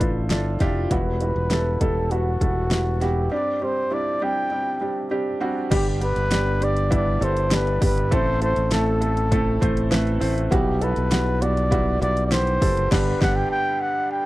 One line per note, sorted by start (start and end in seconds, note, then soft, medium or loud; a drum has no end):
0.00 0.29 A1 medium
0.00 0.93 F3 soft
0.00 0.30 D4 medium
0.00 0.30 E4 medium
0.00 0.30 F4 medium
0.00 0.30 A4 medium
0.00 0.31 B4 medium
0.00 0.93 C5 medium
0.00 kick medium
0.00 closed hi-hat medium
0.30 0.59 G1 medium
0.30 0.55 D4 medium
0.30 0.55 E4 medium
0.30 0.55 F4 medium
0.30 0.55 A4 medium
0.30 snare medium
0.30 closed hi-hat medium
0.60 0.89 F1 medium
0.60 0.85 D4 medium
0.60 0.85 E4 medium
0.60 0.86 F4 medium
0.60 0.86 G4 loud
0.60 kick medium
0.60 snare soft
0.60 closed hi-hat medium
0.91 1.33 E1 medium
0.91 1.77 B2 soft
0.91 1.16 G3 medium
0.91 1.16 B3 medium
0.91 1.16 E4 medium
0.91 1.16 F#4 medium
0.91 1.82 B4 medium
0.91 kick loud
0.91 closed hi-hat medium
1.21 1.46 G3 medium
1.21 1.46 B3 medium
1.21 1.46 E4 medium
1.21 1.46 F#4 medium
1.21 closed hi-hat medium
1.36 1.78 E1 medium
1.50 1.76 G3 medium
1.50 1.76 B3 medium
1.50 1.76 E4 medium
1.50 1.76 A4 medium
1.50 snare medium
1.50 closed hi-hat medium
1.81 2.37 E1 medium
1.81 2.06 G3 medium
1.81 2.06 B3 medium
1.81 2.06 E4 medium
1.81 2.13 A4 medium
1.81 2.06 A4 medium
1.81 kick medium
1.81 closed hi-hat medium
2.11 2.36 G3 medium
2.11 2.36 B3 medium
2.11 2.36 E4 medium
2.11 3.04 F#4 medium
2.11 2.36 F#4 medium
2.11 closed hi-hat medium
2.41 3.27 E1 medium
2.41 2.66 G3 medium
2.41 2.66 B3 medium
2.41 2.66 E4 medium
2.41 2.66 A4 medium
2.41 kick medium
2.41 closed hi-hat medium
2.71 2.96 G3 medium
2.71 2.96 B3 medium
2.71 2.96 E4 medium
2.71 2.96 F#4 medium
2.71 snare loud
2.71 closed hi-hat medium
3.01 3.26 G3 medium
3.01 3.26 B3 medium
3.01 3.26 E4 medium
3.01 3.26 F#4 medium
3.01 3.32 G4 medium
3.01 snare soft
3.01 closed hi-hat medium
3.31 4.17 G2 soft
3.31 3.56 G3 medium
3.31 3.56 C4 medium
3.31 3.56 D4 medium
3.31 3.56 G4 medium
3.31 3.65 D5 medium
3.61 3.86 G3 medium
3.61 3.86 C4 medium
3.61 3.86 D4 soft
3.61 3.86 G4 medium
3.61 3.95 C5 medium
3.91 4.16 G3 medium
3.91 4.16 C4 medium
3.91 4.16 D4 medium
3.91 4.16 E4 medium
3.91 4.25 D5 medium
4.21 4.46 G3 medium
4.21 4.46 C4 medium
4.21 4.46 D4 medium
4.21 4.46 G4 medium
4.21 5.13 G5 medium
4.51 4.76 G3 medium
4.51 4.76 C4 medium
4.51 4.76 D4 medium
4.51 4.76 G4 medium
4.81 5.06 G3 medium
4.81 5.06 C4 medium
4.81 5.06 D4 medium
4.81 5.06 G4 medium
5.11 5.36 G3 medium
5.11 5.36 C4 medium
5.11 5.36 D4 medium
5.11 5.36 G4 medium
5.40 5.66 G3 medium
5.40 5.66 C4 medium
5.40 5.66 D4 medium
5.40 5.66 F#4 loud
5.71 6.14 G1 loud
5.71 6.57 G2 medium
5.71 6.57 D3 medium
5.71 5.96 G3 medium
5.71 5.96 B3 medium
5.71 5.96 D4 medium
5.71 5.96 G4 loud
5.71 5.87 G4 medium
5.71 kick loud
5.71 closed hi-hat medium
5.71 crash medium
6.01 6.26 G3 medium
6.01 6.26 B3 medium
6.01 6.26 D4 medium
6.01 6.26 G4 medium
6.01 6.65 B4 loud
6.01 closed hi-hat medium
6.16 7.18 G1 medium
6.16 closed hi-hat soft
6.31 6.56 G3 medium
6.31 6.56 B3 medium
6.31 6.56 D4 medium
6.31 6.56 G4 medium
6.31 snare medium
6.31 closed hi-hat medium
6.61 6.86 G3 medium
6.61 6.86 B3 medium
6.61 6.86 D4 medium
6.61 6.86 G4 medium
6.61 6.93 D5 medium
6.61 closed hi-hat medium
6.77 closed hi-hat soft
6.90 7.16 G3 medium
6.90 7.16 B3 medium
6.90 7.16 D4 medium
6.90 7.16 E4 loud
6.90 7.26 D5 medium
6.90 kick medium
6.90 closed hi-hat medium
7.20 7.78 G1 medium
7.20 7.46 G3 medium
7.20 7.46 B3 medium
7.20 7.46 D4 medium
7.20 7.46 A4 medium
7.20 7.56 C5 loud
7.20 closed hi-hat medium
7.37 closed hi-hat soft
7.51 7.76 G3 medium
7.51 7.76 B3 medium
7.51 7.76 D4 medium
7.51 7.76 G4 medium
7.51 7.83 B4 medium
7.51 snare loud
7.51 closed hi-hat medium
7.67 closed hi-hat soft
7.81 8.10 G1 medium
7.81 8.06 G3 medium
7.81 8.06 B3 medium
7.81 8.06 D4 medium
7.81 8.06 G4 medium
7.81 8.15 B4 medium
7.81 kick loud
7.81 open hi-hat medium
7.98 closed hi-hat soft
8.11 8.54 A1 loud
8.11 8.97 A2 medium
8.11 8.97 E3 medium
8.11 8.36 A3 medium
8.11 8.36 C4 medium
8.11 8.36 E4 medium
8.11 8.36 A4 loud
8.11 8.42 C5 medium
8.11 kick loud
8.11 closed hi-hat medium
8.41 8.66 A3 medium
8.41 8.66 C4 medium
8.41 8.66 E4 medium
8.41 8.66 A4 medium
8.41 8.70 C5 medium
8.41 closed hi-hat medium
8.56 9.58 A1 medium
8.56 closed hi-hat soft
8.71 8.96 A3 medium
8.71 8.96 C4 medium
8.71 8.96 E4 medium
8.71 8.96 A4 medium
8.71 9.89 A4 medium
8.71 snare medium
8.71 closed hi-hat medium
9.01 9.26 A3 medium
9.01 9.26 C4 medium
9.01 9.26 E4 medium
9.01 9.26 A4 medium
9.01 closed hi-hat medium
9.17 closed hi-hat soft
9.31 9.56 A3 medium
9.31 9.56 C4 medium
9.31 9.56 E4 medium
9.31 9.56 A4 loud
9.31 kick medium
9.31 closed hi-hat medium
9.61 10.18 A1 medium
9.61 9.86 A3 medium
9.61 9.86 C4 medium
9.61 9.86 E4 medium
9.61 9.86 C5 medium
9.61 kick medium
9.61 closed hi-hat medium
9.77 closed hi-hat soft
9.91 10.16 A3 medium
9.91 10.16 C4 medium
9.91 10.16 E4 medium
9.91 10.16 B4 loud
9.91 snare loud
9.91 closed hi-hat medium
10.07 closed hi-hat soft
10.20 10.50 A1 medium
10.20 10.46 A3 medium
10.20 10.46 C4 medium
10.20 10.46 E4 medium
10.20 10.46 C5 medium
10.20 open hi-hat medium
10.38 closed hi-hat soft
10.51 10.94 B1 loud
10.51 11.37 B2 medium
10.51 10.76 G3 medium
10.51 10.76 B3 medium
10.51 10.76 E4 medium
10.51 10.76 F#4 medium
10.51 10.85 G4 medium
10.51 kick loud
10.51 closed hi-hat medium
10.81 11.06 G3 medium
10.81 11.06 B3 medium
10.81 11.06 E4 medium
10.81 11.06 A4 medium
10.81 11.44 B4 medium
10.81 closed hi-hat medium
10.96 11.98 B1 medium
10.96 closed hi-hat soft
11.11 11.36 G3 medium
11.11 11.36 B3 medium
11.11 11.36 E4 medium
11.11 11.36 F#4 medium
11.11 snare medium
11.11 closed hi-hat medium
11.41 11.66 G3 medium
11.41 11.66 B3 medium
11.41 11.66 E4 medium
11.41 11.66 F#4 medium
11.41 12.01 D5 loud
11.41 closed hi-hat medium
11.57 closed hi-hat soft
11.71 11.96 G3 loud
11.71 11.96 B3 medium
11.71 11.96 E4 medium
11.71 11.96 F#4 loud
11.71 kick medium
11.71 closed hi-hat medium
12.01 12.58 B1 loud
12.01 12.26 G3 medium
12.01 12.26 B3 medium
12.01 12.26 E4 medium
12.01 12.26 F#4 medium
12.01 12.23 D5 loud
12.01 closed hi-hat medium
12.17 closed hi-hat soft
12.26 12.33 D5 medium
12.31 12.56 G3 medium
12.31 12.56 B3 medium
12.31 12.56 E4 medium
12.31 12.56 G4 medium
12.31 12.93 C5 loud
12.31 snare loud
12.31 closed hi-hat medium
12.47 closed hi-hat soft
12.61 12.90 F#1 medium
12.61 12.86 G3 medium
12.61 12.86 B3 medium
12.61 12.86 E4 medium
12.61 12.86 A4 medium
12.61 kick loud
12.61 open hi-hat medium
12.77 closed hi-hat soft
12.91 13.12 G1 loud
12.91 13.12 G2 medium
12.91 13.12 D3 medium
12.91 13.12 G3 loud
12.91 13.12 B3 medium
12.91 13.12 D4 medium
12.91 13.12 G4 medium
12.91 13.22 B4 medium
12.91 kick loud
12.91 snare loud
12.91 crash medium
13.21 13.42 G1 medium
13.21 13.42 G3 medium
13.21 13.42 B3 medium
13.21 13.42 D4 medium
13.21 13.42 G4 loud
13.21 13.37 F#5 loud
13.21 kick loud
13.21 snare loud
13.36 13.50 G5 medium
13.51 13.82 G5 loud
13.81 14.11 F#5 loud
14.12 14.26 G5 medium